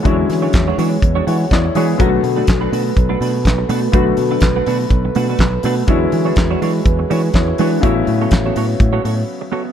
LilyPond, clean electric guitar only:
\new Staff \with { instrumentName = "Clean electric guitar" } { \time 4/4 \key b \dorian \tempo 4 = 123 <gis d' fis' cis''>8 r16 <gis d' fis' cis''>16 r16 <gis d' fis' cis''>16 <gis d' fis' cis''>8 r16 <gis d' fis' cis''>16 <gis d' fis' cis''>16 r8. <gis d' fis' cis''>8 | <a d' fis' b'>8 r16 <a d' fis' b'>16 r16 <a d' fis' b'>16 <a d' fis' b'>8 r16 <a d' fis' b'>16 <a d' fis' b'>16 r8. <a d' fis' b'>8 | <a d' fis' b'>8 r16 <a d' fis' b'>16 r16 <a d' fis' b'>16 <a d' fis' b'>8 r8 <a d' fis' b'>16 <a d' fis' b'>16 r8 <a d' fis' b'>8 | <gis d' fis' cis''>8 r16 <gis d' fis' cis''>16 r16 <gis d' fis' cis''>16 <gis d' fis' cis''>8 r8 <gis d' fis' cis''>8 r8 <gis d' fis' cis''>8 |
<b fis' a' cis''>8 r16 <b fis' a' cis''>16 r16 <b fis' a' cis''>16 <b fis' a' cis''>8 r16 <b fis' a' cis''>16 <b fis' a' cis''>16 r8. <b fis' a' cis''>8 | }